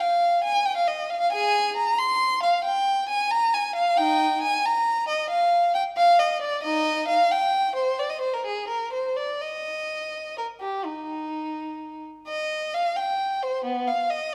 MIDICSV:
0, 0, Header, 1, 2, 480
1, 0, Start_track
1, 0, Key_signature, -3, "major"
1, 0, Tempo, 443459
1, 1443, Time_signature, 12, 3, 24, 8
1, 8650, Tempo, 476948
1, 12970, Tempo, 454201
1, 15149, End_track
2, 0, Start_track
2, 0, Title_t, "Violin"
2, 0, Program_c, 0, 40
2, 6, Note_on_c, 0, 77, 72
2, 479, Note_on_c, 0, 80, 76
2, 484, Note_off_c, 0, 77, 0
2, 711, Note_on_c, 0, 79, 75
2, 717, Note_off_c, 0, 80, 0
2, 827, Note_on_c, 0, 77, 69
2, 837, Note_off_c, 0, 79, 0
2, 949, Note_on_c, 0, 75, 66
2, 953, Note_off_c, 0, 77, 0
2, 1196, Note_off_c, 0, 75, 0
2, 1197, Note_on_c, 0, 77, 67
2, 1295, Note_off_c, 0, 77, 0
2, 1308, Note_on_c, 0, 77, 71
2, 1433, Note_off_c, 0, 77, 0
2, 1437, Note_on_c, 0, 68, 63
2, 1437, Note_on_c, 0, 80, 82
2, 1882, Note_off_c, 0, 68, 0
2, 1906, Note_off_c, 0, 80, 0
2, 1913, Note_on_c, 0, 82, 76
2, 2149, Note_off_c, 0, 82, 0
2, 2154, Note_on_c, 0, 84, 83
2, 2634, Note_on_c, 0, 77, 73
2, 2635, Note_off_c, 0, 84, 0
2, 2867, Note_on_c, 0, 79, 82
2, 2870, Note_off_c, 0, 77, 0
2, 3339, Note_off_c, 0, 79, 0
2, 3347, Note_on_c, 0, 80, 81
2, 3585, Note_off_c, 0, 80, 0
2, 3586, Note_on_c, 0, 82, 89
2, 3831, Note_off_c, 0, 82, 0
2, 3832, Note_on_c, 0, 80, 76
2, 4068, Note_on_c, 0, 77, 74
2, 4074, Note_off_c, 0, 80, 0
2, 4304, Note_on_c, 0, 79, 80
2, 4305, Note_on_c, 0, 63, 70
2, 4306, Note_off_c, 0, 77, 0
2, 4758, Note_off_c, 0, 63, 0
2, 4791, Note_off_c, 0, 79, 0
2, 4791, Note_on_c, 0, 80, 81
2, 5029, Note_off_c, 0, 80, 0
2, 5040, Note_on_c, 0, 82, 83
2, 5507, Note_on_c, 0, 75, 74
2, 5515, Note_off_c, 0, 82, 0
2, 5741, Note_on_c, 0, 77, 74
2, 5745, Note_off_c, 0, 75, 0
2, 6221, Note_off_c, 0, 77, 0
2, 6221, Note_on_c, 0, 79, 72
2, 6307, Note_off_c, 0, 79, 0
2, 6467, Note_on_c, 0, 77, 84
2, 6707, Note_on_c, 0, 75, 72
2, 6710, Note_off_c, 0, 77, 0
2, 6950, Note_on_c, 0, 74, 73
2, 6956, Note_off_c, 0, 75, 0
2, 7183, Note_on_c, 0, 75, 81
2, 7188, Note_on_c, 0, 63, 64
2, 7193, Note_off_c, 0, 74, 0
2, 7638, Note_off_c, 0, 63, 0
2, 7660, Note_off_c, 0, 75, 0
2, 7669, Note_on_c, 0, 77, 76
2, 7908, Note_off_c, 0, 77, 0
2, 7920, Note_on_c, 0, 79, 76
2, 8398, Note_on_c, 0, 72, 64
2, 8404, Note_off_c, 0, 79, 0
2, 8643, Note_off_c, 0, 72, 0
2, 8649, Note_on_c, 0, 74, 58
2, 8760, Note_on_c, 0, 75, 59
2, 8766, Note_off_c, 0, 74, 0
2, 8873, Note_on_c, 0, 72, 58
2, 8881, Note_off_c, 0, 75, 0
2, 8994, Note_off_c, 0, 72, 0
2, 9000, Note_on_c, 0, 70, 53
2, 9119, Note_off_c, 0, 70, 0
2, 9124, Note_on_c, 0, 68, 57
2, 9347, Note_on_c, 0, 70, 60
2, 9355, Note_off_c, 0, 68, 0
2, 9587, Note_off_c, 0, 70, 0
2, 9598, Note_on_c, 0, 72, 51
2, 9834, Note_off_c, 0, 72, 0
2, 9834, Note_on_c, 0, 74, 56
2, 10081, Note_off_c, 0, 74, 0
2, 10081, Note_on_c, 0, 75, 63
2, 11054, Note_on_c, 0, 70, 53
2, 11059, Note_off_c, 0, 75, 0
2, 11134, Note_off_c, 0, 70, 0
2, 11284, Note_on_c, 0, 67, 49
2, 11526, Note_off_c, 0, 67, 0
2, 11533, Note_on_c, 0, 63, 48
2, 12731, Note_off_c, 0, 63, 0
2, 12969, Note_on_c, 0, 75, 69
2, 13425, Note_off_c, 0, 75, 0
2, 13458, Note_on_c, 0, 77, 66
2, 13691, Note_on_c, 0, 79, 63
2, 13703, Note_off_c, 0, 77, 0
2, 14179, Note_off_c, 0, 79, 0
2, 14182, Note_on_c, 0, 72, 60
2, 14413, Note_on_c, 0, 59, 65
2, 14423, Note_off_c, 0, 72, 0
2, 14650, Note_off_c, 0, 59, 0
2, 14654, Note_on_c, 0, 77, 60
2, 14892, Note_on_c, 0, 75, 63
2, 14893, Note_off_c, 0, 77, 0
2, 15130, Note_off_c, 0, 75, 0
2, 15149, End_track
0, 0, End_of_file